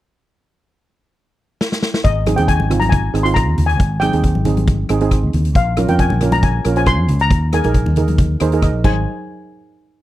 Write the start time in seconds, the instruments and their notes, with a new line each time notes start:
1.61 snare
1.72 snare
1.82 snare
1.94 snare
2.04 fingered electric bass G#1, steel pan D#5, kick, closed hi-hat
2.26 steel pan C4 D#4 G#4, cross-stick, closed hi-hat, high conga
2.36 fingered electric bass D#2, steel pan C4 D#4 G#4 G5, closed hi-hat, high conga
2.48 steel pan G#5, kick, closed hi-hat
2.60 fingered electric bass G#1, high conga
2.70 steel pan C4 D#4 F4, cross-stick, closed hi-hat, low conga
2.80 steel pan A#5, closed hi-hat, high conga
2.89 steel pan G#5, kick, closed hi-hat, low conga
3.14 fingered electric bass G#1, steel pan C4 D#4 G#4, cross-stick, closed hi-hat
3.23 steel pan C4 D#4 F4 C6, closed hi-hat
3.34 steel pan A#5, kick, cross-stick, closed hi-hat
3.48 fingered electric bass D#2
3.58 fingered electric bass D#2, closed hi-hat, low conga
3.66 steel pan G#5, closed hi-hat
3.80 fingered electric bass G#1, kick, closed hi-hat
4.00 steel pan C4 D#4 G#4 G5, cross-stick, closed hi-hat, high conga
4.13 fingered electric bass D#2, steel pan C4 D#4 G#4, closed hi-hat, high conga
4.24 kick, closed hi-hat
4.35 fingered electric bass G#1, high conga
4.45 steel pan C4 D#4 G#4, closed hi-hat, low conga
4.57 closed hi-hat, high conga
4.67 kick, closed hi-hat, low conga
4.89 fingered electric bass G#1, steel pan C4 D#4 G#4, cross-stick, closed hi-hat
5.01 steel pan C4 D#4 G#4, closed hi-hat
5.11 kick, cross-stick, closed hi-hat
5.23 fingered electric bass D#2
5.33 fingered electric bass D#2, closed hi-hat, low conga
5.45 closed hi-hat
5.55 fingered electric bass A#1, steel pan F5, kick, closed hi-hat
5.77 steel pan C#4 F4 A#4, cross-stick, closed hi-hat, high conga
5.88 fingered electric bass F2, steel pan C#4 F4 A#4 G5, closed hi-hat, high conga
5.99 steel pan G#5, kick, closed hi-hat
6.10 fingered electric bass A#1, high conga
6.21 steel pan C#4 F4 A#4, cross-stick, closed hi-hat, low conga
6.32 steel pan A#5, closed hi-hat, high conga
6.42 steel pan G#5, kick, closed hi-hat, low conga
6.65 fingered electric bass A#1, steel pan C#4 F4 A#4, cross-stick, closed hi-hat
6.76 steel pan C#4 F4 C5 G#5, closed hi-hat
6.86 steel pan C6, kick, cross-stick, closed hi-hat
6.99 fingered electric bass F2
7.08 fingered electric bass C#2, closed hi-hat, low conga
7.19 steel pan A#5, closed hi-hat
7.31 fingered electric bass D#2, kick, closed hi-hat
7.53 steel pan D#4 G#4 A#4 G#5, cross-stick, closed hi-hat, high conga
7.64 fingered electric bass A#1, steel pan D#4 G#4 A#4, closed hi-hat, high conga
7.74 kick, closed hi-hat
7.86 fingered electric bass D#2, high conga
7.96 steel pan D#4 G#4 A#4, closed hi-hat, low conga
8.08 closed hi-hat, high conga
8.18 kick, closed hi-hat, low conga
8.40 fingered electric bass D#2, steel pan D#4 G#4 A#4 C5, cross-stick, closed hi-hat
8.52 steel pan D#4 G#4 A#4, closed hi-hat
8.62 steel pan D#5, kick, cross-stick, closed hi-hat
8.74 fingered electric bass A#1
8.84 fingered electric bass G#1, steel pan D#4 G#4 C5 G#5, kick, crash, high conga